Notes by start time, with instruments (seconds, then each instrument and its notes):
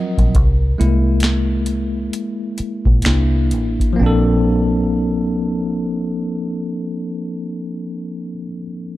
Already playing: tine electric piano F3 F#3 C4 F4 A#4 D#5
0.18 fingered electric bass A#1, kick, closed hi-hat
0.35 fingered electric bass C2, kick, closed hi-hat
0.78 fingered electric bass C2, tine electric piano G#3 A#3 E4, closed hi-hat
1.20 finger snap, snare, closed hi-hat
1.66 closed hi-hat
2.13 closed hi-hat
2.58 muted fingered electric bass stroke, closed hi-hat
2.85 fingered electric bass A#1, kick
3.02 fingered electric bass C2, tine electric piano A#3 D4 E4, finger snap, snare, closed hi-hat
3.51 fingered electric bass A1, closed hi-hat
3.80 kick, closed hi-hat
3.93 tine electric piano F3 A#3
4.00 fingered electric bass A#1, tine electric piano C4 D4
4.06 tine electric piano A4